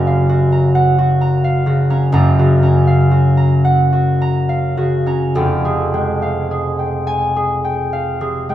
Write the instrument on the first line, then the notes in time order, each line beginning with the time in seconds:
harp
Already playing: F#1 F#2 C#3 C#4 F#4 A#5
0.07 F5
0.29 F#4
0.52 A#5
0.75 F#5
0.98 F#4
1.21 A#5
1.44 F5
1.66 C#3 F#4
1.90 C#4 A#5
2.12 F#1 F#2 A#5
2.39 C#3 F#4
2.63 C#4 A#5
2.87 F5
3.11 F#4
3.37 A#5
3.65 F#5
3.93 F#4
4.22 A#5
4.49 F5
4.77 C#3 F#4
5.06 C#4 A#5
5.35 F1 F2 G5
5.65 C3 G#4
5.94 G#3 G5
6.22 F5
6.51 G#4
6.79 G5
7.07 G#5
7.36 G#4
7.65 G5
7.93 F5
8.21 C3 G#4
8.49 G#3 G5